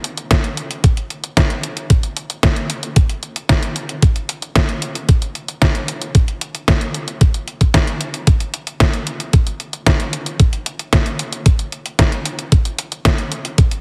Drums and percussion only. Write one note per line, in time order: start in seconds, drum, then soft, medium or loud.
0.04 closed hi-hat medium
0.17 closed hi-hat soft
0.31 kick loud
0.31 snare loud
0.31 closed hi-hat loud
0.44 closed hi-hat soft
0.57 closed hi-hat medium
0.71 closed hi-hat soft
0.84 kick loud
0.84 closed hi-hat loud
0.97 closed hi-hat soft
1.10 closed hi-hat soft
1.24 closed hi-hat soft
1.37 kick loud
1.37 snare loud
1.37 closed hi-hat loud
1.50 closed hi-hat soft
1.63 closed hi-hat medium
1.77 closed hi-hat soft
1.90 kick loud
1.90 closed hi-hat medium
2.03 closed hi-hat soft
2.17 closed hi-hat medium
2.30 closed hi-hat soft
2.43 kick loud
2.43 snare loud
2.43 closed hi-hat medium
2.56 closed hi-hat soft
2.70 closed hi-hat medium
2.83 closed hi-hat soft
2.96 kick loud
2.96 closed hi-hat medium
3.09 closed hi-hat soft
3.23 closed hi-hat soft
3.36 closed hi-hat soft
3.49 kick loud
3.49 snare loud
3.49 closed hi-hat medium
3.63 closed hi-hat soft
3.76 closed hi-hat medium
3.89 closed hi-hat soft
4.02 kick loud
4.02 closed hi-hat medium
4.16 closed hi-hat soft
4.29 closed hi-hat medium
4.42 closed hi-hat soft
4.56 kick loud
4.56 snare loud
4.56 closed hi-hat medium
4.69 closed hi-hat soft
4.82 closed hi-hat medium
4.95 closed hi-hat soft
5.09 kick loud
5.09 closed hi-hat medium
5.22 closed hi-hat soft
5.35 closed hi-hat soft
5.48 closed hi-hat soft
5.62 kick loud
5.62 snare loud
5.62 closed hi-hat medium
5.75 closed hi-hat soft
5.88 closed hi-hat medium
6.01 closed hi-hat soft
6.15 kick loud
6.15 closed hi-hat medium
6.28 closed hi-hat soft
6.41 closed hi-hat medium
6.55 closed hi-hat soft
6.68 kick loud
6.68 snare loud
6.68 closed hi-hat medium
6.81 closed hi-hat soft
6.94 closed hi-hat medium
7.08 closed hi-hat soft
7.21 kick loud
7.21 closed hi-hat medium
7.34 closed hi-hat soft
7.48 closed hi-hat soft
7.61 kick medium
7.61 closed hi-hat soft
7.74 kick loud
7.74 snare loud
7.74 closed hi-hat medium
7.87 closed hi-hat soft
8.01 closed hi-hat medium
8.14 closed hi-hat soft
8.27 kick loud
8.27 closed hi-hat medium
8.40 closed hi-hat soft
8.54 closed hi-hat medium
8.67 closed hi-hat soft
8.80 kick loud
8.80 snare loud
8.80 closed hi-hat medium
8.93 closed hi-hat soft
9.07 closed hi-hat medium
9.20 closed hi-hat soft
9.33 kick loud
9.33 closed hi-hat medium
9.47 closed hi-hat soft
9.60 closed hi-hat soft
9.73 closed hi-hat soft
9.86 kick loud
9.86 snare loud
9.86 closed hi-hat medium
10.00 closed hi-hat soft
10.13 closed hi-hat medium
10.26 closed hi-hat soft
10.40 kick loud
10.40 closed hi-hat medium
10.53 closed hi-hat soft
10.66 closed hi-hat medium
10.79 closed hi-hat soft
10.93 kick loud
10.93 snare loud
10.93 closed hi-hat medium
11.06 closed hi-hat soft
11.19 closed hi-hat medium
11.33 closed hi-hat soft
11.46 kick loud
11.46 closed hi-hat medium
11.59 closed hi-hat soft
11.72 closed hi-hat soft
11.86 closed hi-hat soft
11.99 kick loud
11.99 snare loud
11.99 closed hi-hat medium
12.12 closed hi-hat soft
12.25 closed hi-hat medium
12.39 closed hi-hat soft
12.52 kick loud
12.52 closed hi-hat medium
12.65 closed hi-hat soft
12.79 closed hi-hat medium
12.92 closed hi-hat soft
13.05 kick loud
13.05 snare loud
13.05 closed hi-hat loud
13.18 closed hi-hat soft
13.32 closed hi-hat medium
13.45 closed hi-hat soft
13.58 kick loud
13.58 closed hi-hat medium
13.71 closed hi-hat soft